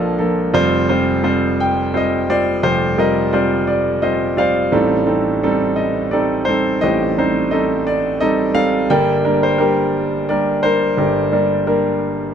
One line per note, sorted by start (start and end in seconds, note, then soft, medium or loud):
0.00 0.50 A#1 medium
0.00 0.50 A#2 medium
0.00 0.19 F3 medium
0.00 0.19 A#3 soft
0.00 0.19 D4 soft
0.00 0.54 F4 medium
0.00 0.19 A4 medium
0.00 0.56 A#4 medium
0.00 0.56 D5 medium
0.00 0.56 D#5 medium
0.00 0.56 F5 medium
0.19 0.54 F3 medium
0.19 0.54 A#3 soft
0.19 0.54 D4 soft
0.19 0.54 A4 medium
0.54 2.58 F1 medium
0.54 2.59 F2 medium
0.54 0.87 G3 medium
0.54 0.87 C4 medium
0.54 0.86 F4 medium
0.54 0.87 C5 medium
0.89 1.22 G3 medium
0.89 1.22 C4 medium
0.89 1.22 F4 medium
0.89 1.22 C5 medium
1.23 1.89 G3 medium
1.23 1.90 C4 medium
1.23 1.89 F4 medium
1.23 1.89 C5 medium
1.60 1.92 G5 medium
1.94 2.26 G3 soft
1.94 2.26 C4 soft
1.94 2.26 F4 soft
1.94 2.26 C5 medium
1.94 2.31 D#5 medium
2.29 2.94 G3 soft
2.29 2.94 C4 soft
2.29 2.62 F4 soft
2.29 2.62 C5 medium
2.29 2.61 D5 medium
2.63 4.69 F1 medium
2.63 4.69 F2 medium
2.63 2.97 F4 medium
2.63 3.64 G4 medium
2.63 2.99 C5 medium
2.97 3.30 G3 medium
2.97 3.30 C4 soft
2.97 3.31 F4 soft
2.97 3.31 A#4 medium
2.97 3.34 D#5 medium
3.33 3.99 G3 medium
3.33 3.99 C4 soft
3.33 3.99 F4 soft
3.33 3.99 C5 medium
3.33 3.66 D5 medium
3.67 4.00 D5 medium
4.02 4.36 G3 soft
4.02 4.36 C4 soft
4.02 4.35 F4 soft
4.02 4.36 C5 medium
4.02 4.38 D#5 medium
4.37 4.70 G3 soft
4.37 4.71 C4 soft
4.37 4.72 F4 soft
4.37 5.40 C5 medium
4.37 4.72 D5 medium
4.37 5.39 F5 medium
4.72 6.78 A1 medium
4.72 6.78 A2 medium
4.72 5.05 G3 medium
4.72 5.05 C4 medium
4.72 5.05 D#4 medium
4.72 5.05 A4 medium
5.06 5.40 G3 medium
5.06 5.40 C4 soft
5.06 5.40 D#4 soft
5.06 5.40 A4 medium
5.43 6.09 G3 medium
5.43 6.09 C4 medium
5.43 6.09 D#4 medium
5.43 6.09 A4 medium
5.76 6.13 D#5 medium
6.11 6.45 G3 soft
6.11 6.45 C4 soft
6.11 6.45 D#4 soft
6.11 6.46 A4 medium
6.11 6.44 D5 medium
6.45 7.13 G3 soft
6.45 7.13 C4 soft
6.45 7.13 D#4 soft
6.45 7.13 A4 medium
6.45 6.78 C5 medium
6.81 8.86 A1 medium
6.81 8.86 A2 medium
6.81 7.83 G4 medium
6.81 7.17 C5 medium
6.81 7.50 D#5 medium
7.18 7.50 G3 medium
7.18 7.50 C4 soft
7.18 7.50 D#4 soft
7.18 7.50 C5 medium
7.51 8.17 G3 medium
7.51 8.17 C4 soft
7.51 8.17 D#4 medium
7.51 8.17 A4 medium
7.51 7.87 D#5 medium
7.87 8.22 D5 medium
8.20 8.52 G3 medium
8.20 8.53 C4 soft
8.20 8.53 D#4 soft
8.20 8.53 A4 medium
8.20 8.53 D#5 medium
8.54 8.89 G3 medium
8.54 8.89 C4 soft
8.54 8.89 D#4 soft
8.54 8.89 A4 medium
8.54 8.87 F5 medium
8.90 10.94 G1 medium
8.90 10.94 G2 medium
8.90 9.22 G3 medium
8.90 9.22 A#3 medium
8.90 9.22 D4 medium
8.90 9.23 A#4 medium
8.90 9.90 D5 medium
8.90 9.43 G5 medium
9.24 9.57 G3 medium
9.24 9.57 A#3 medium
9.24 9.57 D4 soft
9.24 9.57 A#4 medium
9.43 9.60 C5 medium
9.58 10.25 G3 medium
9.58 10.25 A#3 soft
9.58 10.25 D4 soft
9.58 10.60 G4 medium
9.58 10.29 A#4 medium
10.29 10.62 G3 soft
10.29 10.62 A#3 soft
10.29 10.62 D4 soft
10.29 10.62 A#4 medium
10.29 10.61 D5 medium
10.63 11.29 G3 medium
10.63 11.30 A#3 soft
10.63 10.97 D4 soft
10.63 10.96 A#4 medium
10.63 10.95 C5 medium
10.97 12.34 G1 medium
10.97 12.34 G2 medium
10.97 11.31 D4 soft
10.97 12.34 G4 soft
10.97 11.32 A#4 medium
11.32 11.65 G3 medium
11.32 11.65 A#3 soft
11.32 11.65 D4 medium
11.32 11.66 A#4 medium
11.67 12.33 G3 medium
11.67 12.33 A#3 medium
11.67 12.33 D4 soft
11.67 12.33 A#4 medium